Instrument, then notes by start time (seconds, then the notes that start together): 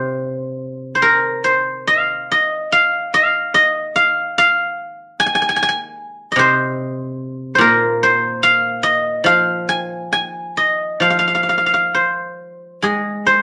guzheng
Already playing: C3 C5
0.95 C5
1.02 A#4
1.44 C5
1.87 F5
2.32 D#5
2.72 F5
3.14 F5
3.54 D#5
3.96 F5
4.38 F5
5.20 G#5
5.26 G#5
5.35 G#5
5.42 G#5
5.49 G#5
5.56 G#5
5.63 G#5
5.69 G#5
6.32 D#5
6.36 C3 C5
7.55 A#2 C5
7.61 A#4
8.03 C5
8.43 F5
8.83 D#5
9.24 F3 F5
9.69 G#5
10.13 G#5
10.57 D#5
11.00 F3 F5
11.10 F5
11.19 F5
11.28 F5
11.35 F5
11.43 F5
11.49 F5
11.58 F5
11.66 F5
11.74 F5
11.95 C5
12.82 G#3 G#4
13.26 C5